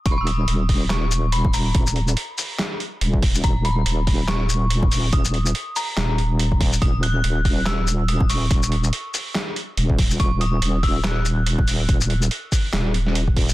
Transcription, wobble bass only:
X:1
M:4/4
L:1/8
Q:"Swing 16ths" 1/4=142
K:Ebphr
V:1 name="Wobble bass" clef=bass
E,,,2 E,,,6 | E,,,2 z4 E,,,2 | E,,,2 E,,,6 | E,,,2 z2 E,,,4 |
E,,,2 E,,,6 | E,,,2 z4 E,,,2 | E,,,2 E,,,6 | E,,,2 z2 E,,,4 |]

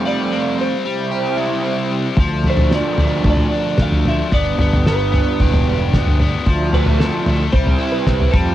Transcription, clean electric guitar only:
X:1
M:4/4
L:1/16
Q:1/4=112
K:Ddor
V:1 name="Clean electric guitar"
d4 c8- c2 z2 | z2 c2 d4 d4 f2 e2 | d4 B8- B2 z2 | z2 B2 A4 c3 B3 A2 |]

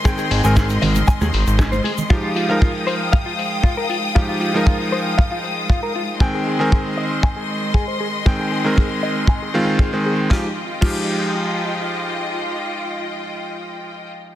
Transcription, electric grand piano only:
X:1
M:4/4
L:1/16
Q:1/4=117
K:Fm
V:1 name="Electric grand piano" clef=bass
[E,A,Cg]3 [E,A,CB]12- [E,A,CB] | [F,A,EG]3 [F,A,EB]12- [F,A,EB] | [F,A,EG]3 [F,A,EB]12- [F,A,EB] | [E,A,Cg]3 [E,A,CB]12- [E,A,CB] |
[E,A,Cg]3 [E,A,CB]6- [E,A,CB] [E,A,CF]3 [E,A,C]3 | [F,A,EG] z3 [F,A,EG]12- | [F,A,EG]16 |]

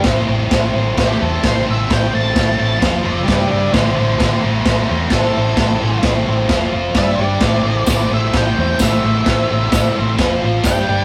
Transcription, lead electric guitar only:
X:1
M:4/4
L:1/8
Q:1/4=130
K:Am
V:1 name="Lead electric guitar"
z4 G A c e | g a2 a z [ce] [ce] [ce] | [Ad] [Ad] [Ad] [Ac] [Ac] [Ac] A2- | A2 z4 e d- |
d2 d e g2 e2- | e4 z2 g2 |]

